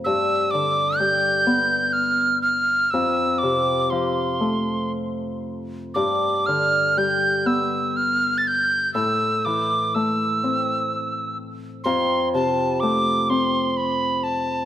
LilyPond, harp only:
\new Staff \with { instrumentName = "Harp" } { \clef bass \time 3/4 \key g \mixolydian \tempo 4 = 61 g,8 d8 g8 b4. | f,8 c8 f8 a4. | g,8 d8 g8 b4. | a,8 e8 a8 c'4. |
f,8 c8 a8 c'4. | }